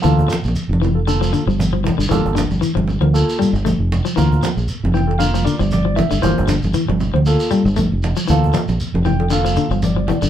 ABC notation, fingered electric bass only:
X:1
M:4/4
L:1/16
Q:"Swing 16ths" 1/4=116
K:Gdor
V:1 name="Fingered electric bass" clef=bass
D,,2 z B,,, z F,,,6 G,,,4 G,,, | G,,, G,,,2 G,,, z G,,,2 D,,2 z2 G,,,2 F,,,2 z | D,,2 z B,,, z F,,,6 G,,,4 G,,, | G,,, G,,,2 G,,, z G,,,2 D,,2 z2 G,,,2 F,,,2 z |
D,,2 z B,,, z F,,,6 G,,,4 G,,, |]